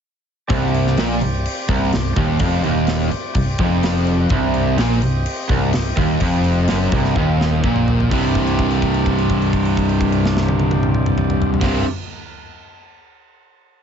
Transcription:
0.47 C1 C2 C4 G4 D5, kick, crash
0.74 crash
0.87 snare
0.97 A#1 A#2, snare, crash
1.21 C1 C2, crash
1.46 crash
1.69 C1 C2, kick, crash
1.92 C1 C2, snare, crash
2.16 D#1 D#2, kick, crash
2.39 F1 F2, kick, crash
2.64 D#1 D#2, crash
2.87 snare, crash
3.11 muted overdriven electric guitar stroke, muted fingered electric bass stroke, crash
3.35 C1 C2, kick, crash
3.58 F1 F2, kick, crash
3.83 snare, crash
4.07 crash
4.29 C1 C2 D#5, kick, crash
4.54 crash
4.77 A#1 A#2, snare, crash
5.02 C1 C2, crash
5.26 crash
5.49 C1 C2, kick, crash
5.73 C1 C2, snare, crash
5.97 D#1 D#2, kick, crash
6.20 F1 F2, kick, crash
6.44 crash
6.68 F#1 F#2, snare, crash
6.92 C1 C2, kick, crash
7.05 snare
7.16 D#1 D#2, kick
7.41 snare
7.64 A#1 A#2, kick
7.76 mid tom
7.88 floor tom
8.00 floor tom
8.10 C1 C2 G2 C4 G4 D5, kick, crash
8.15 C3
8.35 kick, crash
8.47 crash
8.59 kick, crash
8.71 crash
8.82 kick, crash
8.94 crash
9.06 kick, crash
9.18 crash
9.30 kick, crash
9.42 crash
9.53 kick, crash
9.65 crash
9.77 kick, crash
9.89 crash
10.01 kick, crash
10.12 crash
10.25 snare
10.37 snare
10.48 high tom
10.60 high tom
10.71 high tom
10.83 mid tom
10.94 mid tom
11.06 mid tom
11.18 mid tom
11.30 mid tom
11.42 floor tom
11.54 floor tom
11.60 C1 C2 C4 G4 D5, kick, snare, crash
11.64 G2 C3

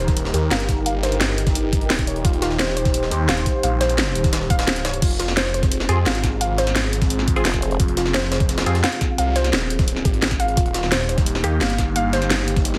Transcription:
Already playing: D#1 D#4 G4 A#4
0.08 kick, snare, closed hi-hat
0.17 closed hi-hat
0.25 snare
0.34 D#2 G4, closed hi-hat
0.51 G1 F5, snare, closed hi-hat
0.60 closed hi-hat
0.69 kick, snare, closed hi-hat
0.86 F5, closed hi-hat
1.03 C5, snare, closed hi-hat
1.12 closed hi-hat
1.21 snare, closed hi-hat
1.29 snare
1.38 closed hi-hat
1.47 kick, snare, closed hi-hat
1.55 closed hi-hat
1.73 kick, closed hi-hat
1.81 closed hi-hat
1.90 D#1, snare, closed hi-hat, open hi-hat
1.99 kick, closed hi-hat
2.07 C#5, closed hi-hat
2.16 closed hi-hat
2.25 D#1 F4 C5, kick, closed hi-hat
2.33 closed hi-hat
2.42 F4, snare, closed hi-hat
2.51 snare
2.59 C5, snare, closed hi-hat
2.68 snare
2.77 C5, closed hi-hat
2.85 kick, snare, closed hi-hat
2.94 closed hi-hat
3.03 snare
3.11 D#2 G4, closed hi-hat
3.29 D#1 F5, snare, closed hi-hat
3.37 closed hi-hat
3.46 kick, snare, closed hi-hat
3.63 A#1 F5, closed hi-hat
3.81 C5, snare, closed hi-hat
3.89 closed hi-hat
3.98 snare, closed hi-hat
4.07 snare
4.15 D#1, closed hi-hat
4.24 kick, snare, closed hi-hat
4.33 snare, closed hi-hat
4.41 snare
4.50 F5, kick, closed hi-hat
4.59 snare, closed hi-hat
4.68 snare, closed hi-hat
4.76 closed hi-hat
4.85 C#5, snare, closed hi-hat
4.93 closed hi-hat
5.02 F1 C4 F4 G#4, kick, closed hi-hat, crash
5.11 closed hi-hat
5.19 F4, snare, closed hi-hat
5.28 snare
5.37 C5, snare, closed hi-hat
5.46 snare
5.54 C5, closed hi-hat
5.63 kick, snare, closed hi-hat
5.72 closed hi-hat
5.80 snare
5.89 F2 C4 F4 G4 G#4, closed hi-hat
6.06 G#1 F5, snare, closed hi-hat
6.15 closed hi-hat
6.24 kick, snare, closed hi-hat
6.41 F5, closed hi-hat
6.58 C5, snare, closed hi-hat
6.67 snare, closed hi-hat
6.76 snare, closed hi-hat
6.84 snare
6.93 closed hi-hat
7.02 kick, snare, closed hi-hat
7.10 closed hi-hat
7.19 snare
7.28 kick, closed hi-hat
7.36 C4 F4 G#4, closed hi-hat
7.45 F1, snare, closed hi-hat, open hi-hat
7.54 kick, snare, closed hi-hat
7.62 C5, closed hi-hat
7.71 closed hi-hat
7.80 F1 F4, kick, closed hi-hat
7.88 closed hi-hat
7.97 F4, snare, closed hi-hat
8.06 snare
8.14 C5, snare, closed hi-hat
8.23 snare
8.32 C5, snare, closed hi-hat
8.40 kick, closed hi-hat
8.49 snare, closed hi-hat
8.58 snare, closed hi-hat
8.66 F2 C4 F4 G4 G#4, closed hi-hat
8.75 snare, closed hi-hat
8.84 F5, snare, closed hi-hat
8.92 closed hi-hat
9.01 kick, snare, closed hi-hat
9.18 C2 F5, closed hi-hat
9.36 C5, snare, closed hi-hat
9.44 snare, closed hi-hat
9.53 D#1, snare, closed hi-hat
9.62 snare
9.70 closed hi-hat
9.79 kick, snare, closed hi-hat
9.88 closed hi-hat
9.96 snare
10.05 G#1 G4, kick, closed hi-hat
10.14 closed hi-hat
10.22 snare, closed hi-hat
10.31 kick, snare, closed hi-hat
10.40 F5, closed hi-hat
10.48 closed hi-hat
10.57 D#1 A#3 D#4 F4 G4, kick, closed hi-hat
10.66 closed hi-hat
10.74 F4, snare, closed hi-hat
10.83 snare
10.92 C5, snare, closed hi-hat
11.00 snare
11.09 C5, closed hi-hat
11.18 kick, snare, closed hi-hat
11.26 closed hi-hat
11.35 snare
11.44 D#2 A#3 D#4 G4, closed hi-hat
11.61 G1 F5, snare, closed hi-hat
11.70 closed hi-hat
11.78 kick, snare, closed hi-hat
11.96 F5, closed hi-hat
12.13 C5, snare, closed hi-hat
12.22 snare, closed hi-hat
12.30 snare, closed hi-hat
12.39 snare
12.48 closed hi-hat
12.56 kick, snare, closed hi-hat
12.65 closed hi-hat
12.74 snare

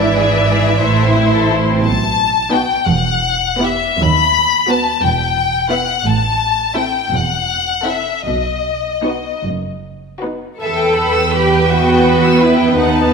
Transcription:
Already playing: G#1 G#2 E3 E4 D5 E5
0.01 E4
0.17 G#4
0.34 B4
0.51 G#4
0.67 E4
0.81 A1 A2 A3 E4 C5
1.01 C4
1.17 E4
1.35 A4
1.52 E4
1.69 C4
1.82 B1 B2 A5
2.51 B3 D#4 F#4 B4 G5
2.87 E1 E2 F#5
3.60 B3 E4 G4 B4 E5
3.99 D#2 B5
4.68 B3 F#4 B4 A5
5.02 E1 E2 G5
5.70 B3 E4 B4 E5 F#5
6.05 A1 A2 A5
6.75 C4 E4 A4 E5 G5
7.11 E1 E2 F#5
7.85 C4 E4 A4 E5
8.26 B1 B2 D#5
9.04 B3 D#4 F#4 B4
9.44 F#1 F#2
10.22 B3 D#4 F#4 B4
10.60 E2 A4 B4 E5 G5
10.79 G5
10.95 B5
11.14 E6
11.34 G4 B5
11.55 G5
11.70 B3 F#4 E5
11.88 G5
12.08 B5
12.25 E6
12.41 E4 B5
12.59 G5
12.77 D#2 B3 D#4 F#5 A5
12.95 A5

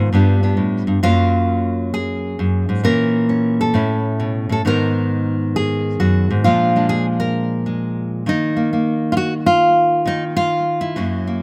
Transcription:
Already playing: G#2 D#3 B3 D#4 F4
0.13 G2 G3 B3 D4
0.43 B3 D4
0.57 A2
0.87 G2
1.03 F#2 F#3 A#3 C#4 F4
1.94 G#4
2.39 F#2
2.69 G#2
2.84 A#2 E3 A#3 C#4 A#4
3.29 C#4
3.61 A4
3.74 A2 C#4 E4
4.20 B2
4.49 A2 A4
4.65 G#2 D#3 B3 D#4 A#4
5.56 G#4
6.00 F#2 F#4
6.31 G#2
6.44 A#2 F3 G#3 D4 F4
6.76 G#3 D4
6.89 G#4
7.20 A#4
7.66 G#3
8.26 D#3 A#3 D#4
8.57 A#3
8.73 A#3
9.12 F4
9.17 F#4
9.46 F4
10.06 D#3 D#4
10.37 F4
10.81 E4
10.96 F#2 F#3 A#3
11.27 A#3

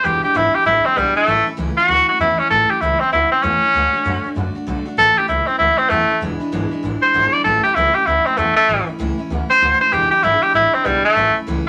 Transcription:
0.04 E1 E2 B2 E3 G#3 D4 E4 G4
0.23 E3 G#3 D4 E4 G4
0.34 G#1 E2 B2 E3 G#3 D4 E4
0.54 E3 G#3 D4 E4 G4
0.65 A1 E3 G#3 D4 E4
0.85 E3 G#3 C4 D4 E4, muted upright bass stroke
0.97 B1 E2 B2 E3 G3 G#3 D4 E4
1.15 E3 G#3 A3 D4 E4
1.27 A1 A2 E3 A3 C#4 E4
1.46 A3 C#4 E4
1.57 C#2 A2 E3 A3 C#4 E4
1.76 A3 C#4 E4 F#4
1.88 D2 E3 A3 C#4 E4
2.08 A3 C#4 E4 F#4, muted upright bass stroke
2.19 E2 A2 E3 A3 C#4 E4
2.39 A3 C#4 E4, muted upright bass stroke
2.50 A1 A2 E3 A3 C#4 E4 A4
2.70 A3 C#4 E4 G4
2.81 C#2 A2 E3 A3 C#4 E4
3.00 A3 C4 C#4 E4, muted upright bass stroke
3.12 D2 E3 A3 C#4 E4
3.32 A3 C4 C#4 E4
3.43 E2 A2 E3 A3 C#4 E4
3.62 A3 C#4 E4, muted upright bass stroke
3.74 D2 D3 A3 D4 F#4
3.93 A3 D4 F#4, muted upright bass stroke
4.04 F#2 D3 A3 D4 F#4
4.24 A3 D4 F#4, muted upright bass stroke
4.35 F#2 D3 A3 D4 F#4
4.55 A3 D4 F#4, muted upright bass stroke
4.67 B1 D3 A3 D4 F#4
4.86 A3 D4 F#4
4.97 A1 A2 E3 A3 C#4 E4 A4
5.17 A3 C#4 E4 G4, muted upright bass stroke
5.28 C#2 A2 E3 A3 C#4 E4
5.47 A3 C4 C#4 E4, muted upright bass stroke
5.59 D2 E3 A3 C#4 E4
5.78 A3 C4 C#4 E4
5.90 E2 A2 E3 A3 C#4 E4
6.09 A3 C#4 E4, muted upright bass stroke
6.21 E1 E2 B2 E3 G#3 D4 E4
6.40 E3 G#3 D4 E4, muted upright bass stroke
6.52 G#1 E2 B2 E3 G#3 D4 E4
6.71 E3 G#3 D4 E4
6.83 A1 E3 G#3 D4 E4
7.02 E3 G#3 D4 E4 C5
7.14 G#1 E2 B2 E3 G#3 D4 E4
7.33 E3 G#3 D4 E4 D5
7.44 A1 A2 E3 A3 C#4 E4 A4
7.63 A3 C#4 E4 G4
7.75 C#2 A2 E3 A3 C#4 E4
7.94 A3 C#4 E4 G4, muted upright bass stroke
8.06 D2 E3 A3 C#4 E4
8.26 A3 C4 C#4 E4, muted upright bass stroke
8.37 E2 A2 E3 A3 C#4 E4
8.56 A3 C#4 E4, muted upright bass stroke
8.68 A1 A2 E3 A3 C#4 E4
8.87 A3 C#4 E4, muted upright bass stroke
8.99 C#2 A2 E3 A3 C#4 E4
9.18 A3 C#4 E4
9.30 D2 E3 A3 C#4 E4
9.50 A3 C#4 C5
9.61 D2 A2 E3 A3 C#4 E4
9.80 A3 C#4 E4 C5
9.92 E1 E2 B2 E3 G#3 D4 E4 G4
10.11 E3 G#3 D4 E4 G4, muted upright bass stroke
10.23 G#1 E2 B2 E3 G#3 D4 E4
10.42 E3 G#3 D4 E4 G4
10.54 A1 E3 G#3 D4 E4
10.73 E3 G#3 C4 D4 E4
10.85 B1 E2 B2 E3 G3 G#3 D4 E4
11.05 E3 G#3 A3 D4, muted upright bass stroke
11.16 A1 A2 E3 A3 C#4 E4
11.35 A3 C#4 E4, muted upright bass stroke
11.47 C#2 A2 E3 A3 C#4 E4

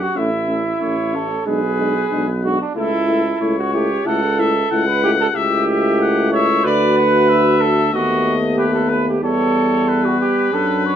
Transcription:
Already playing: F#5
0.02 F#4
0.15 A1 A3 C#4 E4 E5
0.48 A3 C#4
0.80 A1 A3 C#4 C#5
1.13 A3 C#4 A4
1.46 B1 G#3 D4 G#4 B4
1.79 G#3 D4
2.11 B1 G#3 D4
2.43 G#3 D4 F#4
2.61 D4
2.75 C#2 A3 E4 A4
3.08 A3 E4
3.41 C#2 A3 E4 C#5
3.58 F#4
3.73 A3 E4 G4
4.05 C#2 A3 E4 A4 F#5
4.38 A3 E4 E5
4.71 C#2 A3 E4 F#5
4.87 B4
5.03 A3 E4 G4
5.20 A4
5.35 C#2 A3 E4 G4 E5
5.68 E5
6.01 F#5
6.32 C#5 E5
6.64 D2 A3 F#4 B4 D5
6.98 F#5
7.30 E5
7.61 A4
7.93 D#2 A3 B3 F#4 D#5
8.56 G4 B4
8.74 A4
8.89 B4
9.08 G4
9.23 E2 G3 B3 A4 C#5
9.88 B4
10.05 F#4
10.20 G4
10.52 F#2 F#3 D4 A4
10.85 C#5

